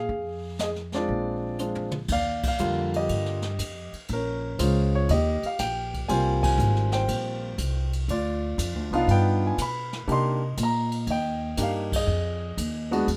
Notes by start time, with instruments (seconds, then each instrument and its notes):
Already playing: grand piano G#4 F5
0.09 upright bass F2, brush sweep, kick
0.59 grand piano G#4 D#5, snare, hi-hat pedal
0.76 snare
0.92 snare
0.94 grand piano G#3 C4 D4 F4 D5, snare
1.09 upright bass A#1, brush sweep, kick
1.59 grand piano G#3 C4 D4 F4, hi-hat pedal
1.75 floor tom
1.91 mid tom
2.08 upright bass D#2, kick, crash
2.12 grand piano D5 F5
2.43 kick, crash
2.48 grand piano F5
2.58 upright bass F2, grand piano D3 G3 A#3 F4, hi-hat pedal
2.94 grand piano D#5, ride
2.98 grand piano G4
3.09 upright bass G2, kick, ride
3.26 snare
3.42 snare
3.59 upright bass F2, kick, hi-hat pedal, ride
3.93 muted upright bass stroke, ride
4.08 upright bass A#1, kick, ride
4.13 grand piano C#4 A#4
4.59 upright bass C#2, grand piano G#3 C#4 F4 C5, kick, hi-hat pedal, ride
4.95 grand piano C#5
5.09 upright bass D#2, grand piano G4 D#5, ride
5.43 grand piano F5, muted upright bass stroke, ride
5.59 upright bass A#1, grand piano G5, kick, snare, hi-hat pedal, ride
5.94 kick, ride
6.08 upright bass C2, grand piano G3 A#3 C4 F4 C5 G#5, kick, ride
6.43 grand piano G#5, kick, crash
6.58 upright bass G#1, hi-hat pedal
6.76 snare
6.92 grand piano C5 G5, snare, ride
7.08 upright bass A#1, kick, ride
7.58 upright bass C2, kick, hi-hat pedal, ride
7.93 ride
8.08 upright bass D2, grand piano F4 D5, kick, ride
8.58 upright bass F2, kick, hi-hat pedal, ride
8.74 upright bass D2
8.91 upright bass C2, grand piano B3 D4 D#4 F4, ride
8.95 grand piano F5
9.08 upright bass G2, grand piano B4 G5, ride
9.47 grand piano G#5
9.58 upright bass B2, kick, hi-hat pedal, ride
9.62 grand piano B5
9.93 snare
10.08 upright bass C3, grand piano A#3 D4 D#4 G4, kick, ride
10.12 grand piano D#5 C6
10.57 upright bass A#2, kick, hi-hat pedal, ride
10.63 grand piano A#5
10.92 ride
11.07 upright bass D#2, grand piano D#5, kick, ride
11.11 grand piano G5
11.57 upright bass G2, grand piano A#3 D4 D#4 G4, kick, hi-hat pedal, ride
11.63 grand piano F5
11.92 grand piano G#4 D#5, kick, crash
12.07 upright bass F2
12.57 upright bass D#2, kick, hi-hat pedal, ride
12.91 grand piano G#3 B3 D4 F#4, ride
13.08 upright bass E2, kick, ride